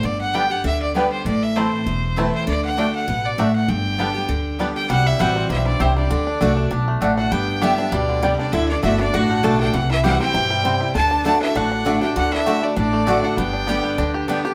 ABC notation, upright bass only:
X:1
M:4/4
L:1/8
Q:"Swing" 1/4=198
K:G
V:1 name="Upright bass" clef=bass
G,,,4 D,,4 | A,,,4 E,,,4 | D,,4 A,,,4 | G,,,4 D,,4 |
C,,2 A,,,2 B,,,2 C,,2 | D,,2 C,,2 B,,,2 A,,,2 | G,,,4 D,,4 | D,,2 G,,,2 A,,,2 B,,,2 |
C,,4 G,,4 | D,,4 A,,,4 | D,,4 A,,,4 | G,,,4 D,,4 |]